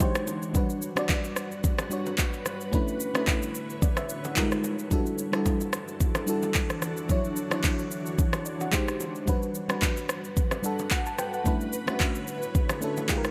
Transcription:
0.00 G#3 D#4 G4 C5, kick, high bongo, shaker
0.15 cross-stick, shaker
0.27 high bongo, low bongo, shaker
0.42 shaker
0.53 G3 D4 F#4 B4, kick, low conga, shaker
0.70 shaker
0.82 shaker
0.96 G3 D4 F#4 D5, cross-stick, low bongo, shaker
1.09 kick, clap, high bongo, low conga, shaker
1.24 shaker
1.36 cross-stick, shaker
1.51 shaker
1.64 kick, low conga, shaker
1.78 cross-stick, low bongo, shaker
1.90 G3 D4 F#4 C#5, shaker
2.06 low bongo, shaker
2.18 kick, clap, high bongo, shaker
2.33 shaker
2.46 cross-stick, high bongo, low bongo, shaker
2.61 shaker
2.71 D3 A3 C#4 D4 E4 B4 C#5, kick, low conga, shaker
2.88 shaker
3.00 shaker
3.14 A3 C#4 D4 E4 B4, cross-stick, low bongo, shaker
3.27 kick, clap, high bongo, low conga, shaker
3.42 shaker
3.55 shaker
3.70 shaker
3.82 D5, kick, low conga, shaker
3.97 E5, cross-stick, low bongo, shaker
4.09 shaker
4.24 F#5, low bongo, shaker
4.35 G3 D#4 F4 G4 A#4, kick, clap, high bongo, shaker
4.42 G#3
4.52 cross-stick, shaker
4.64 high bongo, low bongo, shaker
4.79 shaker
4.90 E3 G3 D4 E4 F#4 A4, kick, low conga, shaker
5.06 shaker
5.18 shaker
5.32 G3 D4 E4 F#4 A4, cross-stick, low bongo, shaker
5.46 kick, high bongo, low conga, shaker
5.61 high bongo, shaker
5.73 cross-stick, shaker
5.88 shaker
6.00 kick, low conga, shaker
6.15 cross-stick, low bongo, shaker
6.26 G3 D4 E4 F#4 A4, shaker
6.42 low bongo, shaker
6.54 kick, clap, high bongo, shaker
6.70 cross-stick, shaker
6.82 cross-stick, high bongo, low bongo, shaker
6.97 shaker
7.08 F#3 D4 E4 C#5, kick, low conga, shaker
7.24 shaker
7.36 shaker
7.50 F#3 D4 E4 C#5, cross-stick, low bongo, shaker
7.64 kick, clap, high bongo, low conga, shaker
7.79 shaker
7.91 shaker
8.06 shaker
8.18 kick, low conga, shaker
8.33 C#5, cross-stick, low bongo, shaker
8.46 D5, shaker
8.61 F#5, low bongo, shaker
8.71 G#3 D#4 G4 C5, kick, clap, high bongo, shaker
8.88 cross-stick, shaker
9.00 high bongo, low bongo, shaker
9.15 shaker
9.26 G3 D4 F#4 B4, kick, low conga, shaker
9.43 shaker
9.55 shaker
9.68 G3 D4 F#4 B4, cross-stick, low bongo, shaker
9.82 kick, clap, high bongo, low conga, shaker
9.97 shaker
10.09 cross-stick, shaker
10.24 shaker
10.37 kick, low conga, shaker
10.51 cross-stick, low bongo, shaker
10.62 G3 D4 F#4 A4, shaker
10.79 low bongo, shaker
10.91 F#5, kick, clap, high bongo, shaker
11.06 A5, shaker
11.18 G5, cross-stick, high bongo, low bongo, shaker
11.33 F#5, shaker
11.44 D3 A3 C#4 D4 E4 B4 C#5, kick, low conga, shaker
11.61 shaker
11.73 shaker
11.87 A3 C#4 D4 E4 F#4, cross-stick, low bongo, shaker
12.00 kick, clap, high bongo, low conga, shaker
12.15 shaker
12.27 shaker
12.42 shaker
12.55 kick, low conga, shaker
12.69 cross-stick, low bongo, shaker
12.81 A3 C#4 D4 E4 A4, shaker
12.97 low bongo, shaker
13.08 G#3 D#4 F4 G4 G#4, kick, clap, high bongo, shaker
13.18 A#4
13.24 cross-stick, shaker

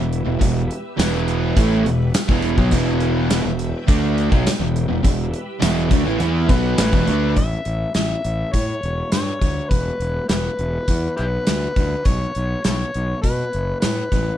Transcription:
Already playing: E2 B2 E4 G4 B4 E5
0.00 E1
0.13 closed hi-hat
0.27 E1 E2 B2
0.40 E1 E2 B2 G4 B4 E5, kick, closed hi-hat
0.71 closed hi-hat
0.98 E1 E2 B2 E3, snare, closed hi-hat, tambourine
1.28 closed hi-hat
1.57 A1 A2 E3 A3, kick, closed hi-hat
1.86 E1 E2 B2, closed hi-hat
2.14 snare, closed hi-hat, tambourine
2.29 E1 E2 B2 E3, kick
2.42 closed hi-hat
2.58 B1 B2 F#3, kick
2.71 E1 E2 B2 E3 B4 E5 G5, kick, closed hi-hat
3.00 closed hi-hat
3.30 snare, closed hi-hat, tambourine
3.45 E1 E2 B2
3.59 closed hi-hat
3.88 D2 D3 A3 D4, kick, closed hi-hat
4.18 closed hi-hat
4.32 B1 B2 F#3, kick
4.46 muted fingered electric bass stroke, muted distorted electric guitar stroke, muted overdriven electric guitar stroke, snare, closed hi-hat, tambourine
4.60 E1 E2 B2
4.76 closed hi-hat
4.89 E1 E2 B2
5.04 E1 E2 B2 G4 B4 E5, kick, closed hi-hat
5.34 closed hi-hat
5.62 E1 E2 B2 E3, snare, closed hi-hat, tambourine
5.91 D2 D3 A3, kick, closed hi-hat
6.05 A1 A2 E3
6.19 E2 E3 B3 E4, closed hi-hat
6.49 B1 B2 F#3 B3 B4, kick, closed hi-hat
6.78 A1 A2 E3, snare, closed hi-hat, tambourine
6.93 E1 E2 B2, kick
7.07 D2 D3 A3 D4, closed hi-hat
7.36 A1 E5, kick, closed hi-hat
7.65 A1, closed hi-hat
7.94 A1 E5, snare, closed hi-hat, tambourine
8.25 A1, closed hi-hat
8.52 A2 C#5, kick, closed hi-hat
8.83 E1, closed hi-hat
9.12 G2 C#5, snare, closed hi-hat, tambourine
9.42 D2, kick, closed hi-hat
9.70 E1 B4, kick, closed hi-hat
10.00 E1, closed hi-hat
10.29 E1 E4 G4 B4, snare, closed hi-hat, tambourine
10.59 E1, closed hi-hat
10.88 E2, kick, closed hi-hat
11.17 B1 E4 G4 B4, closed hi-hat
11.47 D2, snare, closed hi-hat, tambourine
11.76 D2, kick, closed hi-hat
12.05 B1 C#5, kick, closed hi-hat
12.35 B1, closed hi-hat
12.64 B1 E4 A4 C#5, snare, closed hi-hat, tambourine
12.94 B1, closed hi-hat
13.22 B2 B4, kick, closed hi-hat
13.53 F#1, closed hi-hat
13.81 A2 B4, snare, closed hi-hat, tambourine
14.12 A1, kick, closed hi-hat

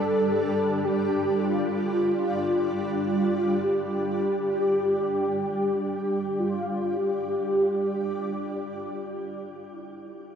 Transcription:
Already playing: G3 D4 G4 A4 D5
0.84 G4
1.40 F4
3.07 F4
3.63 G4
6.39 F4
6.96 G4
8.06 F4
9.74 E4
10.30 D4

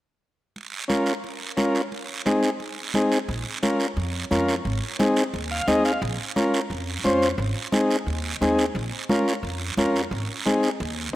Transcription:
0.56 high conga, long guiro
0.88 C#4 F4 A#4, high conga, short guiro
1.06 short guiro
1.24 high conga, long guiro
1.57 C#4 F4 A#4, high conga, short guiro
1.75 short guiro
1.92 high conga, long guiro
2.26 C4 D#4 G#4, high conga, short guiro
2.43 short guiro
2.60 high conga, long guiro
2.94 C4 D#4 G#4, high conga, short guiro
3.12 short guiro
3.28 A#1, high conga, long guiro
3.63 C#4 F4 A#4, high conga, short guiro
3.80 short guiro
3.97 F2, high conga, long guiro
4.31 F2 C#4 F4 A#4, high conga, short guiro
4.48 short guiro
4.65 G#1, high conga, long guiro
4.99 C4 D#4 G#4, high conga, short guiro
5.16 short guiro
5.33 D#2, high conga, long guiro
5.51 F5
5.67 D#2 C4 D#4 G#4 D#5, high conga, short guiro
5.85 F5, short guiro
6.02 A#1, high conga, long guiro
6.36 C#4 F4 A#4, high conga, short guiro
6.54 short guiro
6.70 F2, high conga, long guiro
7.04 F2 C#4 F4 C5, high conga, short guiro
7.22 short guiro
7.38 G#1, high conga, long guiro
7.72 C4 D#4 G#4, high conga, short guiro
7.90 short guiro
8.06 D#2, high conga, long guiro
8.41 D#2 C4 D#4 G#4, high conga, short guiro
8.59 short guiro
8.75 A#1, high conga, long guiro
9.09 C#4 F4 A#4, high conga, short guiro
9.28 short guiro
9.43 F2, high conga, long guiro
9.77 F2 C#4 F4 A#4, high conga, short guiro
9.96 short guiro
10.11 G#1, high conga, long guiro
10.46 C4 D#4 G#4, high conga, short guiro
10.63 short guiro
10.80 D#2, high conga, long guiro

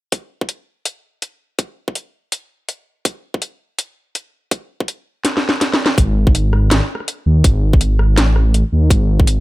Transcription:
0.12 kick, closed hi-hat
0.41 kick
0.49 closed hi-hat
0.85 closed hi-hat
1.22 closed hi-hat
1.59 kick, closed hi-hat
1.88 kick
1.95 closed hi-hat
2.32 closed hi-hat
2.69 closed hi-hat
3.05 kick, closed hi-hat
3.34 kick
3.42 closed hi-hat
3.79 closed hi-hat
4.15 closed hi-hat
4.51 kick, closed hi-hat
4.80 kick
4.88 closed hi-hat
5.25 snare, closed hi-hat
5.37 snare
5.49 snare
5.61 snare, closed hi-hat
5.74 snare
5.86 snare
5.98 G#1, kick, closed hi-hat
6.27 kick
6.35 closed hi-hat
6.53 cross-stick
6.71 G#1, snare, closed hi-hat
6.95 cross-stick
7.00 cross-stick
7.08 closed hi-hat
7.26 D#2
7.44 G#1, kick, closed hi-hat
7.73 kick
7.81 closed hi-hat
7.99 cross-stick
8.17 A1, snare, closed hi-hat
8.36 cross-stick
8.54 closed hi-hat
8.72 D#2
8.90 G#1, kick, closed hi-hat
9.20 kick
9.27 closed hi-hat

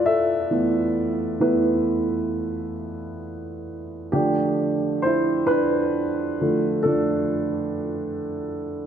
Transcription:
Already playing: B2 A3 B3 E4 F4 B4 D5
0.06 A4 E5
0.51 E3 A3 B3
1.40 E3 A3 B3 E4 B4
4.12 D3 F3 A3 D4 G4
5.02 E4 C5
5.47 D4 B4
6.41 D3 F3 A3
6.83 D3 F3 A3 A4
6.87 D4

